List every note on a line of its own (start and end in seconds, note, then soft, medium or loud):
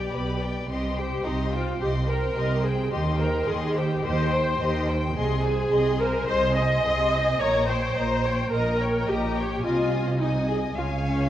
0.00 0.40 G4 medium
0.00 0.13 B4 soft
0.00 0.13 D5 soft
0.00 0.12 G5 soft
0.12 0.62 B1 soft
0.12 0.62 B2 soft
0.12 0.41 B4 soft
0.12 0.41 D5 soft
0.12 0.41 B5 soft
0.40 0.69 B4 soft
0.40 0.69 D5 soft
0.40 0.68 G5 soft
0.68 1.18 C2 medium
0.68 1.17 C3 medium
0.68 0.95 G4 soft
0.68 0.96 D#5 soft
0.68 0.94 C6 soft
0.96 1.23 G4 medium
0.96 1.24 C5 soft
0.96 1.24 G5 soft
1.24 1.73 C2 soft
1.24 1.73 C3 soft
1.24 1.52 D#4 medium
1.24 1.53 G4 soft
1.24 1.52 D#5 soft
1.24 1.52 C6 soft
1.52 1.79 F4 medium
1.52 1.81 C5 soft
1.52 1.80 G5 soft
1.79 2.29 C2 medium
1.79 2.29 C3 medium
1.79 1.89 G4 medium
1.79 2.06 G4 soft
1.79 2.06 D#5 soft
1.79 2.05 C6 soft
2.07 2.63 A#4 medium
2.07 2.36 C5 soft
2.07 2.35 G5 soft
2.35 2.85 C2 medium
2.35 2.85 C3 medium
2.35 2.64 G4 soft
2.35 2.64 D#5 soft
2.35 2.63 C6 soft
2.63 2.92 G#4 medium
2.63 2.91 C5 soft
2.63 2.91 G5 soft
2.91 3.40 D#2 medium
2.91 3.40 D#3 medium
2.91 3.17 G4 soft
2.91 3.00 G4 medium
2.91 3.17 D#5 soft
2.91 3.17 C6 soft
3.18 3.47 A#4 medium
3.18 3.47 C5 soft
3.18 3.47 G5 soft
3.46 3.97 D#2 medium
3.46 3.97 D#3 medium
3.46 3.76 G4 soft
3.46 3.76 G#4 medium
3.46 3.76 D#5 soft
3.46 3.75 C6 soft
3.75 4.04 G4 medium
3.75 4.04 C5 soft
3.75 4.04 G5 soft
4.04 4.53 D#2 medium
4.04 4.53 D#3 medium
4.04 4.31 G4 soft
4.04 4.89 C5 medium
4.04 4.31 D#5 soft
4.04 4.30 C6 soft
4.32 4.61 C5 soft
4.32 4.60 G5 soft
4.59 5.09 D#2 medium
4.59 5.10 D#3 medium
4.59 4.89 G4 soft
4.59 4.88 D#5 soft
4.59 4.88 C6 soft
4.88 5.16 C5 soft
4.88 5.16 G5 soft
5.15 5.65 C2 medium
5.15 5.65 C3 medium
5.15 5.96 G#4 medium
5.15 5.43 G#4 medium
5.15 5.42 D#5 soft
5.15 5.41 C6 soft
5.43 5.72 C5 soft
5.43 5.72 G#5 soft
5.71 6.22 C2 medium
5.71 6.21 C3 medium
5.71 6.00 G#4 medium
5.71 6.00 D#5 soft
5.71 6.00 C6 soft
5.99 6.28 A#4 medium
5.99 6.28 C5 soft
5.99 6.28 G#5 soft
6.27 6.78 C2 medium
6.27 6.77 C3 medium
6.27 6.55 G#4 medium
6.27 6.55 C5 medium
6.27 6.55 D#5 soft
6.27 6.54 C6 medium
6.56 6.85 C5 medium
6.56 7.38 D#5 medium
6.56 6.84 G#5 soft
6.84 7.34 C2 medium
6.84 7.33 C3 medium
6.84 7.13 G#4 soft
6.84 7.13 D#5 soft
6.84 7.12 C6 medium
7.12 7.41 C5 soft
7.12 7.40 G#5 soft
7.40 7.90 A#1 medium
7.40 7.89 A#2 medium
7.40 7.67 A#4 soft
7.40 7.68 C#5 medium
7.40 7.67 D#5 soft
7.40 7.66 A#5 medium
7.68 8.50 C5 medium
7.68 7.97 C#5 soft
7.68 7.96 G5 soft
7.96 8.45 A#1 medium
7.96 8.45 A#2 medium
7.96 8.24 A#4 soft
7.96 8.24 D#5 medium
7.96 8.24 A#5 soft
8.23 8.53 C#5 soft
8.23 8.52 G5 soft
8.51 9.02 A#1 medium
8.51 9.02 A#2 medium
8.51 9.07 A#4 medium
8.51 8.78 A#4 soft
8.51 8.79 D#5 medium
8.51 8.79 A#5 medium
8.80 9.09 C#5 soft
8.80 9.08 G5 soft
9.07 9.58 A#1 medium
9.07 9.58 A#2 medium
9.07 9.64 G4 medium
9.07 9.37 A#4 soft
9.07 9.37 D#5 soft
9.07 9.36 A#5 soft
9.35 9.65 C#5 soft
9.35 9.64 G5 soft
9.63 10.73 C2 medium
9.63 10.73 C3 medium
9.63 10.19 F4 medium
9.63 10.17 D#5 medium
9.63 10.16 G#5 medium
10.20 10.49 D#4 medium
10.20 10.76 D#5 soft
10.20 10.75 G#5 soft
10.48 10.56 G#4 medium
10.76 11.29 C#2 soft
10.76 11.29 C#3 medium
10.76 10.84 F4 medium
10.76 11.29 C#5 soft
10.76 11.29 F5 soft
10.76 11.29 G#5 soft
11.05 11.29 C#4 medium